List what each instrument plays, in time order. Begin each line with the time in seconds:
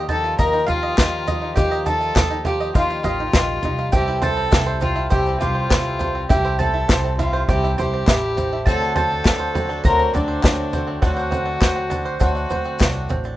Already playing: upright bass D#2, twelve-string acoustic guitar D#3 A#3 F4 G4, brass ensemble F3 G3 A#3 D#4 G4, five-string banjo F4 D#5
0.09 five-string banjo D#4, fiddle A4, mandolin A5, floor tom, shaker
0.24 five-string banjo F4, shaker
0.38 upright bass D#2, twelve-string acoustic guitar D#3 A#3 F4 G4, fiddle A#4, five-string banjo D#5, mandolin A#5, kick, floor tom, shaker
0.53 five-string banjo D#4, shaker
0.66 upright bass D#2, five-string banjo F4, fiddle F4, twelve-string acoustic guitar F4 G4, mandolin F5, floor tom, shaker
0.71 twelve-string acoustic guitar A#3
0.83 five-string banjo D#5
0.97 upright bass D#2, twelve-string acoustic guitar D#3 A#3 F4 G4, five-string banjo D#4, kick, snare, clap, floor tom, shaker
1.27 five-string banjo D#5, floor tom, shaker
1.42 five-string banjo D#4
1.56 upright bass D#2, twelve-string acoustic guitar D#3 A#3 F4 G4, five-string banjo F4, fiddle G4, mandolin G5, kick, floor tom, shaker
1.71 five-string banjo D#5, shaker
1.86 five-string banjo D#4, fiddle A4, mandolin A5, floor tom, shaker
2.01 five-string banjo F4, shaker
2.16 upright bass D#2, five-string banjo D#5, kick, snare, clap, floor tom, shaker
2.30 five-string banjo D#4, shaker
2.45 twelve-string acoustic guitar A#3 F4 G4, five-string banjo F4, fiddle G4, mandolin G5, floor tom, shaker
2.60 five-string banjo D#5, shaker
2.75 upright bass D#2, twelve-string acoustic guitar D#3 A#3 F4 G4, five-string banjo D#4, fiddle F4, mandolin F5, kick, floor tom, shaker
2.90 five-string banjo F4, shaker
3.03 upright bass A1, twelve-string acoustic guitar A#3 F4 G4, fiddle F4, five-string banjo D#5, mandolin F5, floor tom, shaker
3.20 five-string banjo D#4
3.33 upright bass A#1, twelve-string acoustic guitar D#3 A#3 F4 G4, five-string banjo F4, kick, snare, clap, floor tom, shaker
3.63 upright bass C2, five-string banjo D#4, floor tom, shaker
3.77 five-string banjo F4, shaker
3.92 upright bass C2, twelve-string acoustic guitar C3 E3 A3 E4 G4, brass ensemble C3 A3 C4, five-string banjo C4, fiddle G4, mandolin G5, kick, floor tom, shaker
4.07 five-string banjo E4, shaker
4.22 fiddle A4, five-string banjo C5, mandolin A5, floor tom, shaker
4.37 five-string banjo C4
4.51 upright bass C2, five-string banjo E4, kick, snare, clap, floor tom, shaker
4.66 five-string banjo C5, shaker
4.81 twelve-string acoustic guitar A3 E4 G4, five-string banjo C4, fiddle F4, mandolin F5, floor tom, shaker
4.96 five-string banjo E4, shaker
5.10 upright bass C2, twelve-string acoustic guitar C3 E3 A3 E4 G4, fiddle G4, five-string banjo C5, mandolin G5, kick, floor tom, shaker
5.26 five-string banjo C4, shaker
5.40 upright bass C2, twelve-string acoustic guitar E4 G4, fiddle F4, five-string banjo G4, mandolin F5, floor tom, shaker
5.44 twelve-string acoustic guitar A3
5.55 five-string banjo C5
5.70 upright bass C2, twelve-string acoustic guitar E3 A3 E4 G4, five-string banjo C4, kick, snare, clap, floor tom, shaker
5.99 twelve-string acoustic guitar E4 G4, five-string banjo C5, floor tom, shaker
6.04 twelve-string acoustic guitar A3
6.15 five-string banjo C4
6.29 upright bass C2, twelve-string acoustic guitar C3 E3 A3 E4 G4, five-string banjo E4, fiddle G4, mandolin G5, kick, floor tom, shaker
6.45 five-string banjo C5, shaker
6.59 five-string banjo C4, fiddle A4, mandolin A5, floor tom, shaker
6.74 five-string banjo E4
6.88 upright bass C2, five-string banjo C5, kick, snare, clap, floor tom, shaker
7.04 five-string banjo C4, shaker
7.18 twelve-string acoustic guitar A3 E4 G4, five-string banjo E4, fiddle F4, mandolin F5, floor tom, shaker
7.33 five-string banjo C5, shaker
7.49 upright bass C2, twelve-string acoustic guitar C3 E3 A3 E4 G4, five-string banjo C4, fiddle G4, mandolin G5, kick, floor tom, shaker
7.64 five-string banjo E4, shaker
7.78 upright bass C2, twelve-string acoustic guitar A3 E4 G4, fiddle G4, five-string banjo C5, mandolin G5, floor tom, shaker
7.94 five-string banjo C4
8.07 upright bass A1, twelve-string acoustic guitar E3 A3 E4 G4, five-string banjo E4, kick, snare, clap, floor tom, shaker
8.35 twelve-string acoustic guitar A3 E4 G4, five-string banjo C4, floor tom, shaker
8.53 five-string banjo E4
8.66 upright bass D2, twelve-string acoustic guitar D3 F#3 A3 C4 F#4, brass ensemble D3 F#3 A3 F#4, five-string banjo C4, fiddle A4, mandolin A5, kick, floor tom, shaker
8.82 five-string banjo D4, shaker
8.96 fiddle A4, five-string banjo C5, mandolin A5, floor tom, shaker
9.11 five-string banjo C4
9.25 upright bass D2, five-string banjo D4, kick, snare, clap, floor tom, shaker
9.40 five-string banjo C5, shaker
9.55 twelve-string acoustic guitar A3 C4 F#4, five-string banjo C4, floor tom, shaker
9.69 five-string banjo D4, shaker
9.84 upright bass D2, twelve-string acoustic guitar D3 F#3 A3 C4 F#4, fiddle A#4, five-string banjo C5, mandolin A#5, kick, floor tom, shaker
10.00 five-string banjo C4, shaker
10.14 upright bass D2, twelve-string acoustic guitar A3 C4 F#4, five-string banjo D4, fiddle D4, mandolin D5, floor tom, shaker
10.28 five-string banjo C5
10.43 upright bass D2, twelve-string acoustic guitar F#3 A3 C4 F#4, five-string banjo C4, kick, snare, clap, floor tom, shaker
10.73 twelve-string acoustic guitar A3 C4 F#4, five-string banjo C5, floor tom, shaker
10.87 five-string banjo C4
11.02 upright bass D2, twelve-string acoustic guitar D3 F#3 A3 C4 F#4, five-string banjo D4, fiddle F#4, mandolin F#5, kick, floor tom, shaker
11.17 five-string banjo C5, shaker
11.31 five-string banjo C4, floor tom, shaker
11.46 five-string banjo D4
11.61 upright bass D2, five-string banjo C5, kick, snare, clap, floor tom, shaker
11.76 five-string banjo C4
11.90 twelve-string acoustic guitar A3 C4 F#4, five-string banjo D4, floor tom, shaker
12.05 five-string banjo C5, shaker
12.19 upright bass D2, twelve-string acoustic guitar D3 F#3 A3 C4 F#4, five-string banjo C4, fiddle F#4, mandolin F#5, kick, floor tom, shaker
12.35 five-string banjo D4, shaker
12.49 upright bass D2, twelve-string acoustic guitar A3 C4 F#4, five-string banjo C5, floor tom, shaker
12.64 five-string banjo C4, shaker
12.79 upright bass C2, twelve-string acoustic guitar F#3 A3 C4 F#4, five-string banjo D4, kick, snare, clap, floor tom, shaker
12.94 shaker
13.09 upright bass A1, five-string banjo C4, floor tom, shaker
13.24 five-string banjo D4, shaker